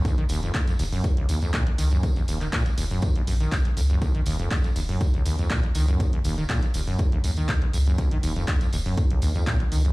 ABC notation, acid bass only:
X:1
M:4/4
L:1/16
Q:1/4=121
K:Ebm
V:1 name="Acid bass" clef=bass
E,, E, E,, F,, E,, F,, E,, G,, E,, D,, E,, F,, B,, E,, E, G,, | E,, E,, E,, E, B,, E,, E,, G,, E,, E,, G,, E, E,, E,, F,, G,, | E,, E, E,, F,, E,, F,, E,, G,, E,, D,, E,, F,, B,, E,, E, G,, | E,, E,, E,, E, B,, E,, E,, G,, E,, E,, G,, E, E,, E,, F,, G,, |
E,, E, E,, F,, E,, F,, E,, G,, E,, D,, E,, F,, B,, E,, E, G,, |]